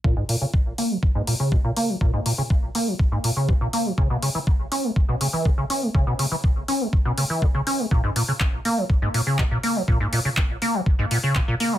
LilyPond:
<<
  \new Staff \with { instrumentName = "Acid bass" } { \clef bass \time 4/4 \key des \lydian \tempo 4 = 122 bes,16 aes,16 bes,16 des16 r8 bes16 f16 r16 aes,16 bes,16 des16 bes,16 bes,16 bes16 f16 | bes,16 aes,16 bes,16 des16 r8 bes16 f16 r16 aes,16 bes,16 des16 bes,16 bes,16 bes16 f16 | des16 ces16 des16 fes16 r8 des'16 aes16 r16 ces16 des16 fes16 des16 des16 des'16 aes16 | des16 ces16 des16 fes16 r8 des'16 aes16 r16 ces16 des16 fes16 des16 des16 des'16 aes16 |
bes,16 aes,16 bes,16 des16 r8 bes16 f16 r16 aes,16 bes,16 des16 bes,16 bes,16 bes16 f16 | bes,16 aes,16 bes,16 des16 r8 bes16 f16 r16 aes,16 bes,16 des16 bes,16 bes,16 bes16 f16 | }
  \new DrumStaff \with { instrumentName = "Drums" } \drummode { \time 4/4 bd8 hho8 bd8 hho8 bd8 hho8 bd8 hho8 | bd8 hho8 bd8 hho8 bd8 hho8 bd8 hho8 | bd8 hho8 bd8 hho8 bd8 hho8 bd8 hho8 | bd8 hho8 bd8 hho8 bd8 hho8 bd8 hho8 |
bd8 hho8 <hc bd>8 hho8 bd8 hho8 <hc bd>8 hho8 | bd8 hho8 <hc bd>8 hho8 bd8 hho8 <hc bd>8 hho8 | }
>>